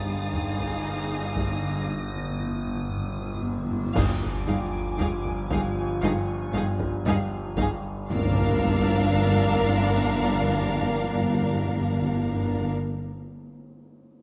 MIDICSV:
0, 0, Header, 1, 16, 480
1, 0, Start_track
1, 0, Tempo, 1034483
1, 1839, Time_signature, 4, 2, 24, 8
1, 6600, End_track
2, 0, Start_track
2, 0, Title_t, "Violin section"
2, 0, Program_c, 0, 48
2, 0, Note_on_c, 0, 87, 64
2, 0, Note_on_c, 0, 93, 63
2, 328, Note_off_c, 0, 93, 0
2, 328, Note_on_c, 0, 94, 63
2, 1100, Note_off_c, 0, 94, 0
2, 1581, Note_off_c, 0, 87, 0
2, 1829, Note_on_c, 0, 86, 49
2, 1835, Note_on_c, 0, 80, 51
2, 2719, Note_off_c, 0, 86, 0
2, 2719, Note_on_c, 0, 85, 49
2, 3015, Note_off_c, 0, 85, 0
2, 3498, Note_off_c, 0, 80, 0
2, 3769, Note_on_c, 0, 86, 52
2, 3769, Note_on_c, 0, 89, 57
2, 3771, Note_on_c, 0, 88, 55
2, 4465, Note_off_c, 0, 89, 0
2, 4946, Note_off_c, 0, 88, 0
2, 5425, Note_off_c, 0, 86, 0
2, 6600, End_track
3, 0, Start_track
3, 0, Title_t, "Harp"
3, 0, Program_c, 1, 46
3, 0, Note_on_c, 1, 84, 50
3, 395, Note_on_c, 1, 82, 36
3, 401, Note_on_c, 1, 70, 27
3, 1014, Note_off_c, 1, 84, 0
3, 1840, Note_on_c, 1, 87, 48
3, 1856, Note_off_c, 1, 82, 0
3, 1859, Note_off_c, 1, 70, 0
3, 3650, Note_off_c, 1, 87, 0
3, 6600, End_track
4, 0, Start_track
4, 0, Title_t, "Violin section"
4, 0, Program_c, 2, 48
4, 0, Note_on_c, 2, 77, 55
4, 862, Note_off_c, 2, 77, 0
4, 1834, Note_on_c, 2, 77, 55
4, 1871, Note_off_c, 2, 77, 0
4, 2079, Note_on_c, 2, 77, 50
4, 2116, Note_off_c, 2, 77, 0
4, 2314, Note_on_c, 2, 77, 53
4, 2351, Note_off_c, 2, 77, 0
4, 2561, Note_on_c, 2, 77, 60
4, 2598, Note_off_c, 2, 77, 0
4, 2791, Note_on_c, 2, 77, 69
4, 2829, Note_off_c, 2, 77, 0
4, 3034, Note_on_c, 2, 77, 63
4, 3071, Note_off_c, 2, 77, 0
4, 3281, Note_on_c, 2, 77, 70
4, 3318, Note_off_c, 2, 77, 0
4, 3517, Note_on_c, 2, 77, 66
4, 3554, Note_off_c, 2, 77, 0
4, 3758, Note_on_c, 2, 77, 74
4, 5894, Note_off_c, 2, 77, 0
4, 6600, End_track
5, 0, Start_track
5, 0, Title_t, "Violin section"
5, 0, Program_c, 3, 48
5, 0, Note_on_c, 3, 68, 54
5, 860, Note_off_c, 3, 68, 0
5, 1835, Note_on_c, 3, 68, 61
5, 1872, Note_off_c, 3, 68, 0
5, 2072, Note_on_c, 3, 68, 50
5, 2110, Note_off_c, 3, 68, 0
5, 2323, Note_on_c, 3, 68, 55
5, 2360, Note_off_c, 3, 68, 0
5, 2563, Note_on_c, 3, 68, 60
5, 2600, Note_off_c, 3, 68, 0
5, 2803, Note_on_c, 3, 68, 72
5, 2840, Note_off_c, 3, 68, 0
5, 3048, Note_on_c, 3, 68, 69
5, 3085, Note_off_c, 3, 68, 0
5, 3285, Note_on_c, 3, 68, 76
5, 3322, Note_off_c, 3, 68, 0
5, 3530, Note_on_c, 3, 68, 64
5, 3568, Note_off_c, 3, 68, 0
5, 3765, Note_on_c, 3, 70, 69
5, 5902, Note_off_c, 3, 70, 0
5, 6600, End_track
6, 0, Start_track
6, 0, Title_t, "Viola section"
6, 0, Program_c, 4, 48
6, 0, Note_on_c, 4, 63, 54
6, 860, Note_off_c, 4, 63, 0
6, 1838, Note_on_c, 4, 63, 55
6, 1875, Note_off_c, 4, 63, 0
6, 2073, Note_on_c, 4, 63, 53
6, 2110, Note_off_c, 4, 63, 0
6, 2312, Note_on_c, 4, 63, 53
6, 2349, Note_off_c, 4, 63, 0
6, 2553, Note_on_c, 4, 63, 56
6, 2590, Note_off_c, 4, 63, 0
6, 2795, Note_on_c, 4, 63, 66
6, 2832, Note_off_c, 4, 63, 0
6, 3035, Note_on_c, 4, 63, 68
6, 3072, Note_off_c, 4, 63, 0
6, 3276, Note_on_c, 4, 63, 74
6, 3313, Note_off_c, 4, 63, 0
6, 3515, Note_on_c, 4, 63, 64
6, 3552, Note_off_c, 4, 63, 0
6, 3757, Note_on_c, 4, 62, 68
6, 5893, Note_off_c, 4, 62, 0
6, 6600, End_track
7, 0, Start_track
7, 0, Title_t, "French horn section"
7, 0, Program_c, 5, 60
7, 1835, Note_on_c, 5, 65, 66
7, 1836, Note_on_c, 5, 53, 67
7, 3590, Note_off_c, 5, 53, 0
7, 3590, Note_off_c, 5, 65, 0
7, 3760, Note_on_c, 5, 70, 64
7, 3763, Note_on_c, 5, 53, 66
7, 5896, Note_off_c, 5, 70, 0
7, 5899, Note_off_c, 5, 53, 0
7, 6600, End_track
8, 0, Start_track
8, 0, Title_t, "Cello section"
8, 0, Program_c, 6, 48
8, 0, Note_on_c, 6, 43, 50
8, 862, Note_off_c, 6, 43, 0
8, 1839, Note_on_c, 6, 43, 58
8, 1876, Note_off_c, 6, 43, 0
8, 2077, Note_on_c, 6, 43, 60
8, 2114, Note_off_c, 6, 43, 0
8, 2316, Note_on_c, 6, 43, 67
8, 2353, Note_off_c, 6, 43, 0
8, 2557, Note_on_c, 6, 43, 72
8, 2594, Note_off_c, 6, 43, 0
8, 2798, Note_on_c, 6, 43, 84
8, 2835, Note_off_c, 6, 43, 0
8, 3033, Note_on_c, 6, 43, 72
8, 3070, Note_off_c, 6, 43, 0
8, 3280, Note_on_c, 6, 43, 86
8, 3317, Note_off_c, 6, 43, 0
8, 3516, Note_on_c, 6, 43, 72
8, 3553, Note_off_c, 6, 43, 0
8, 3758, Note_on_c, 6, 43, 70
8, 5894, Note_off_c, 6, 43, 0
8, 6600, End_track
9, 0, Start_track
9, 0, Title_t, "Harp"
9, 0, Program_c, 7, 46
9, 0, Note_on_c, 7, 43, 52
9, 160, Note_on_c, 7, 55, 39
9, 390, Note_off_c, 7, 55, 0
9, 396, Note_on_c, 7, 55, 36
9, 632, Note_off_c, 7, 43, 0
9, 638, Note_on_c, 7, 43, 34
9, 1832, Note_off_c, 7, 43, 0
9, 1838, Note_on_c, 7, 43, 71
9, 1856, Note_off_c, 7, 55, 0
9, 2080, Note_on_c, 7, 55, 52
9, 2316, Note_off_c, 7, 43, 0
9, 2322, Note_on_c, 7, 43, 56
9, 2557, Note_off_c, 7, 43, 0
9, 2563, Note_on_c, 7, 43, 61
9, 2797, Note_off_c, 7, 43, 0
9, 2802, Note_on_c, 7, 43, 82
9, 3037, Note_off_c, 7, 43, 0
9, 3042, Note_on_c, 7, 43, 66
9, 3277, Note_off_c, 7, 55, 0
9, 3283, Note_on_c, 7, 55, 65
9, 3519, Note_off_c, 7, 55, 0
9, 3525, Note_on_c, 7, 55, 64
9, 3780, Note_off_c, 7, 43, 0
9, 5334, Note_off_c, 7, 55, 0
9, 6600, End_track
10, 0, Start_track
10, 0, Title_t, "Timpani"
10, 0, Program_c, 8, 47
10, 24, Note_on_c, 8, 43, 31
10, 56, Note_off_c, 8, 43, 0
10, 62, Note_on_c, 8, 43, 32
10, 88, Note_off_c, 8, 43, 0
10, 94, Note_on_c, 8, 43, 32
10, 126, Note_off_c, 8, 43, 0
10, 132, Note_on_c, 8, 43, 30
10, 155, Note_off_c, 8, 43, 0
10, 160, Note_on_c, 8, 43, 33
10, 190, Note_off_c, 8, 43, 0
10, 195, Note_on_c, 8, 43, 34
10, 223, Note_off_c, 8, 43, 0
10, 229, Note_on_c, 8, 43, 33
10, 259, Note_off_c, 8, 43, 0
10, 265, Note_on_c, 8, 43, 35
10, 293, Note_off_c, 8, 43, 0
10, 298, Note_on_c, 8, 43, 35
10, 325, Note_off_c, 8, 43, 0
10, 330, Note_on_c, 8, 43, 37
10, 365, Note_off_c, 8, 43, 0
10, 371, Note_on_c, 8, 43, 39
10, 399, Note_off_c, 8, 43, 0
10, 404, Note_on_c, 8, 43, 38
10, 436, Note_off_c, 8, 43, 0
10, 441, Note_on_c, 8, 43, 41
10, 473, Note_off_c, 8, 43, 0
10, 478, Note_on_c, 8, 43, 39
10, 504, Note_off_c, 8, 43, 0
10, 510, Note_on_c, 8, 43, 41
10, 541, Note_off_c, 8, 43, 0
10, 547, Note_on_c, 8, 43, 39
10, 574, Note_off_c, 8, 43, 0
10, 580, Note_on_c, 8, 43, 40
10, 608, Note_off_c, 8, 43, 0
10, 614, Note_on_c, 8, 43, 42
10, 643, Note_off_c, 8, 43, 0
10, 649, Note_on_c, 8, 43, 44
10, 677, Note_off_c, 8, 43, 0
10, 683, Note_on_c, 8, 43, 46
10, 715, Note_off_c, 8, 43, 0
10, 720, Note_on_c, 8, 43, 44
10, 746, Note_off_c, 8, 43, 0
10, 752, Note_on_c, 8, 43, 49
10, 783, Note_off_c, 8, 43, 0
10, 789, Note_on_c, 8, 43, 46
10, 821, Note_off_c, 8, 43, 0
10, 826, Note_on_c, 8, 43, 47
10, 856, Note_off_c, 8, 43, 0
10, 861, Note_on_c, 8, 43, 48
10, 892, Note_off_c, 8, 43, 0
10, 897, Note_on_c, 8, 43, 48
10, 924, Note_off_c, 8, 43, 0
10, 930, Note_on_c, 8, 43, 52
10, 959, Note_off_c, 8, 43, 0
10, 965, Note_on_c, 8, 43, 49
10, 993, Note_off_c, 8, 43, 0
10, 998, Note_on_c, 8, 43, 52
10, 1027, Note_off_c, 8, 43, 0
10, 1033, Note_on_c, 8, 43, 54
10, 1062, Note_off_c, 8, 43, 0
10, 1068, Note_on_c, 8, 43, 57
10, 1099, Note_off_c, 8, 43, 0
10, 1104, Note_on_c, 8, 43, 55
10, 1130, Note_off_c, 8, 43, 0
10, 1135, Note_on_c, 8, 43, 56
10, 1163, Note_off_c, 8, 43, 0
10, 1169, Note_on_c, 8, 43, 55
10, 1198, Note_off_c, 8, 43, 0
10, 1204, Note_on_c, 8, 43, 56
10, 1230, Note_off_c, 8, 43, 0
10, 1236, Note_on_c, 8, 43, 67
10, 1266, Note_off_c, 8, 43, 0
10, 1272, Note_on_c, 8, 43, 64
10, 1298, Note_off_c, 8, 43, 0
10, 1304, Note_on_c, 8, 43, 66
10, 1338, Note_off_c, 8, 43, 0
10, 1343, Note_on_c, 8, 43, 63
10, 1370, Note_off_c, 8, 43, 0
10, 1376, Note_on_c, 8, 43, 66
10, 1406, Note_off_c, 8, 43, 0
10, 1412, Note_on_c, 8, 43, 67
10, 1436, Note_off_c, 8, 43, 0
10, 1441, Note_on_c, 8, 43, 70
10, 1472, Note_off_c, 8, 43, 0
10, 1478, Note_on_c, 8, 43, 70
10, 1511, Note_off_c, 8, 43, 0
10, 1516, Note_on_c, 8, 43, 75
10, 1543, Note_off_c, 8, 43, 0
10, 1549, Note_on_c, 8, 43, 76
10, 1580, Note_off_c, 8, 43, 0
10, 1586, Note_on_c, 8, 43, 73
10, 1615, Note_off_c, 8, 43, 0
10, 1621, Note_on_c, 8, 43, 67
10, 1648, Note_off_c, 8, 43, 0
10, 1654, Note_on_c, 8, 43, 68
10, 1682, Note_off_c, 8, 43, 0
10, 1688, Note_on_c, 8, 43, 70
10, 1716, Note_off_c, 8, 43, 0
10, 1721, Note_on_c, 8, 43, 85
10, 1752, Note_off_c, 8, 43, 0
10, 1757, Note_on_c, 8, 43, 80
10, 1786, Note_off_c, 8, 43, 0
10, 1791, Note_on_c, 8, 43, 83
10, 1827, Note_off_c, 8, 43, 0
10, 1834, Note_on_c, 8, 43, 81
10, 2538, Note_off_c, 8, 43, 0
10, 3757, Note_on_c, 8, 43, 79
10, 3787, Note_off_c, 8, 43, 0
10, 3787, Note_on_c, 8, 43, 73
10, 3818, Note_off_c, 8, 43, 0
10, 3818, Note_on_c, 8, 43, 74
10, 3849, Note_off_c, 8, 43, 0
10, 3849, Note_on_c, 8, 43, 70
10, 3880, Note_off_c, 8, 43, 0
10, 3880, Note_on_c, 8, 43, 74
10, 3910, Note_off_c, 8, 43, 0
10, 3910, Note_on_c, 8, 43, 68
10, 3940, Note_off_c, 8, 43, 0
10, 3940, Note_on_c, 8, 43, 76
10, 3971, Note_off_c, 8, 43, 0
10, 3972, Note_on_c, 8, 43, 70
10, 4001, Note_off_c, 8, 43, 0
10, 4001, Note_on_c, 8, 43, 82
10, 4032, Note_off_c, 8, 43, 0
10, 4035, Note_on_c, 8, 43, 66
10, 4066, Note_off_c, 8, 43, 0
10, 4066, Note_on_c, 8, 43, 77
10, 4096, Note_off_c, 8, 43, 0
10, 4096, Note_on_c, 8, 43, 70
10, 4127, Note_off_c, 8, 43, 0
10, 4127, Note_on_c, 8, 43, 76
10, 4157, Note_off_c, 8, 43, 0
10, 4157, Note_on_c, 8, 43, 68
10, 4187, Note_off_c, 8, 43, 0
10, 4187, Note_on_c, 8, 43, 87
10, 4217, Note_off_c, 8, 43, 0
10, 4217, Note_on_c, 8, 43, 69
10, 4246, Note_off_c, 8, 43, 0
10, 4246, Note_on_c, 8, 43, 75
10, 4277, Note_off_c, 8, 43, 0
10, 4277, Note_on_c, 8, 43, 72
10, 4308, Note_off_c, 8, 43, 0
10, 4311, Note_on_c, 8, 43, 75
10, 4341, Note_off_c, 8, 43, 0
10, 4344, Note_on_c, 8, 43, 78
10, 4375, Note_off_c, 8, 43, 0
10, 4375, Note_on_c, 8, 43, 68
10, 4403, Note_off_c, 8, 43, 0
10, 4403, Note_on_c, 8, 43, 72
10, 4434, Note_off_c, 8, 43, 0
10, 4435, Note_on_c, 8, 43, 76
10, 4466, Note_off_c, 8, 43, 0
10, 4468, Note_on_c, 8, 43, 74
10, 4496, Note_off_c, 8, 43, 0
10, 4496, Note_on_c, 8, 43, 78
10, 4527, Note_off_c, 8, 43, 0
10, 4528, Note_on_c, 8, 43, 69
10, 4558, Note_off_c, 8, 43, 0
10, 4558, Note_on_c, 8, 43, 70
10, 4588, Note_off_c, 8, 43, 0
10, 4590, Note_on_c, 8, 43, 63
10, 4619, Note_off_c, 8, 43, 0
10, 4619, Note_on_c, 8, 43, 67
10, 4650, Note_off_c, 8, 43, 0
10, 4650, Note_on_c, 8, 43, 73
10, 4681, Note_off_c, 8, 43, 0
10, 4681, Note_on_c, 8, 43, 78
10, 4712, Note_off_c, 8, 43, 0
10, 4712, Note_on_c, 8, 43, 65
10, 4741, Note_off_c, 8, 43, 0
10, 4741, Note_on_c, 8, 43, 72
10, 4772, Note_off_c, 8, 43, 0
10, 4773, Note_on_c, 8, 43, 62
10, 4804, Note_off_c, 8, 43, 0
10, 4804, Note_on_c, 8, 43, 76
10, 4832, Note_off_c, 8, 43, 0
10, 4832, Note_on_c, 8, 43, 73
10, 4860, Note_off_c, 8, 43, 0
10, 4860, Note_on_c, 8, 43, 76
10, 4891, Note_off_c, 8, 43, 0
10, 4894, Note_on_c, 8, 43, 72
10, 4923, Note_off_c, 8, 43, 0
10, 4923, Note_on_c, 8, 43, 77
10, 4953, Note_off_c, 8, 43, 0
10, 4953, Note_on_c, 8, 43, 71
10, 4984, Note_off_c, 8, 43, 0
10, 4985, Note_on_c, 8, 43, 73
10, 5016, Note_off_c, 8, 43, 0
10, 5018, Note_on_c, 8, 43, 71
10, 5049, Note_off_c, 8, 43, 0
10, 5049, Note_on_c, 8, 43, 79
10, 5079, Note_off_c, 8, 43, 0
10, 5079, Note_on_c, 8, 43, 68
10, 5109, Note_off_c, 8, 43, 0
10, 5110, Note_on_c, 8, 43, 74
10, 5141, Note_off_c, 8, 43, 0
10, 5141, Note_on_c, 8, 43, 77
10, 5172, Note_off_c, 8, 43, 0
10, 5172, Note_on_c, 8, 43, 71
10, 5200, Note_off_c, 8, 43, 0
10, 5200, Note_on_c, 8, 43, 66
10, 5231, Note_off_c, 8, 43, 0
10, 5231, Note_on_c, 8, 43, 76
10, 5262, Note_off_c, 8, 43, 0
10, 5263, Note_on_c, 8, 43, 69
10, 5294, Note_off_c, 8, 43, 0
10, 5295, Note_on_c, 8, 43, 80
10, 5326, Note_off_c, 8, 43, 0
10, 5327, Note_on_c, 8, 43, 63
10, 5356, Note_off_c, 8, 43, 0
10, 5356, Note_on_c, 8, 43, 76
10, 5386, Note_off_c, 8, 43, 0
10, 5387, Note_on_c, 8, 43, 68
10, 5418, Note_off_c, 8, 43, 0
10, 5418, Note_on_c, 8, 43, 71
10, 5449, Note_off_c, 8, 43, 0
10, 5449, Note_on_c, 8, 43, 70
10, 5478, Note_off_c, 8, 43, 0
10, 5478, Note_on_c, 8, 43, 75
10, 5507, Note_off_c, 8, 43, 0
10, 5507, Note_on_c, 8, 43, 72
10, 5538, Note_off_c, 8, 43, 0
10, 5544, Note_on_c, 8, 43, 81
10, 5574, Note_off_c, 8, 43, 0
10, 5574, Note_on_c, 8, 43, 78
10, 5604, Note_off_c, 8, 43, 0
10, 5604, Note_on_c, 8, 43, 79
10, 5635, Note_off_c, 8, 43, 0
10, 5636, Note_on_c, 8, 43, 68
10, 5667, Note_off_c, 8, 43, 0
10, 5667, Note_on_c, 8, 43, 73
10, 5698, Note_off_c, 8, 43, 0
10, 5700, Note_on_c, 8, 43, 65
10, 5730, Note_off_c, 8, 43, 0
10, 5730, Note_on_c, 8, 43, 73
10, 5759, Note_off_c, 8, 43, 0
10, 5759, Note_on_c, 8, 43, 74
10, 5790, Note_off_c, 8, 43, 0
10, 5790, Note_on_c, 8, 43, 72
10, 5821, Note_off_c, 8, 43, 0
10, 5822, Note_on_c, 8, 43, 71
10, 5853, Note_off_c, 8, 43, 0
10, 5856, Note_on_c, 8, 43, 73
10, 5886, Note_off_c, 8, 43, 0
10, 6600, End_track
11, 0, Start_track
11, 0, Title_t, "Double bass section"
11, 0, Program_c, 10, 48
11, 0, Note_on_c, 10, 31, 50
11, 861, Note_off_c, 10, 31, 0
11, 1838, Note_on_c, 10, 31, 62
11, 1875, Note_off_c, 10, 31, 0
11, 2078, Note_on_c, 10, 31, 56
11, 2116, Note_off_c, 10, 31, 0
11, 2319, Note_on_c, 10, 31, 63
11, 2356, Note_off_c, 10, 31, 0
11, 2557, Note_on_c, 10, 31, 64
11, 2594, Note_off_c, 10, 31, 0
11, 2799, Note_on_c, 10, 31, 71
11, 2836, Note_off_c, 10, 31, 0
11, 3036, Note_on_c, 10, 31, 79
11, 3073, Note_off_c, 10, 31, 0
11, 3281, Note_on_c, 10, 31, 83
11, 3318, Note_off_c, 10, 31, 0
11, 3515, Note_on_c, 10, 31, 75
11, 3552, Note_off_c, 10, 31, 0
11, 3757, Note_on_c, 10, 31, 70
11, 5893, Note_off_c, 10, 31, 0
11, 6600, End_track
12, 0, Start_track
12, 0, Title_t, "Synth drone"
12, 0, Program_c, 11, 95
12, 0, Note_on_c, 11, 31, 83
12, 1821, Note_off_c, 11, 31, 0
12, 1829, Note_on_c, 11, 31, 92
12, 3735, Note_off_c, 11, 31, 0
12, 3756, Note_on_c, 11, 31, 88
12, 5892, Note_off_c, 11, 31, 0
12, 6600, End_track
13, 0, Start_track
13, 0, Title_t, "Impact"
13, 0, Program_c, 12, 103
13, 3759, Note_on_c, 12, 60, 71
13, 5913, Note_off_c, 12, 60, 0
13, 6600, End_track
14, 0, Start_track
14, 0, Title_t, "Taiko and cinematic ensemble drums"
14, 155, Note_on_c, 9, 43, 49
14, 202, Note_off_c, 9, 43, 0
14, 276, Note_on_c, 9, 41, 70
14, 322, Note_off_c, 9, 41, 0
14, 634, Note_on_c, 9, 41, 76
14, 680, Note_off_c, 9, 41, 0
14, 1837, Note_on_c, 9, 41, 93
14, 1884, Note_off_c, 9, 41, 0
14, 1959, Note_on_c, 9, 43, 47
14, 2005, Note_off_c, 9, 43, 0
14, 2316, Note_on_c, 9, 43, 57
14, 2362, Note_off_c, 9, 43, 0
14, 2435, Note_on_c, 9, 43, 49
14, 2481, Note_off_c, 9, 43, 0
14, 2554, Note_on_c, 9, 41, 85
14, 2601, Note_off_c, 9, 41, 0
14, 3155, Note_on_c, 9, 41, 83
14, 3202, Note_off_c, 9, 41, 0
14, 3276, Note_on_c, 9, 43, 66
14, 3322, Note_off_c, 9, 43, 0
14, 3514, Note_on_c, 9, 41, 83
14, 3561, Note_off_c, 9, 41, 0
14, 6600, End_track
15, 0, Start_track
15, 0, Title_t, "Tam-tam"
15, 3759, Note_on_c, 9, 52, 60
15, 3805, Note_off_c, 9, 52, 0
15, 6600, End_track
16, 0, Start_track
16, 0, Title_t, "Drums"
16, 1838, Note_on_c, 9, 35, 68
16, 1838, Note_on_c, 9, 49, 67
16, 1885, Note_off_c, 9, 35, 0
16, 1885, Note_off_c, 9, 49, 0
16, 6600, End_track
0, 0, End_of_file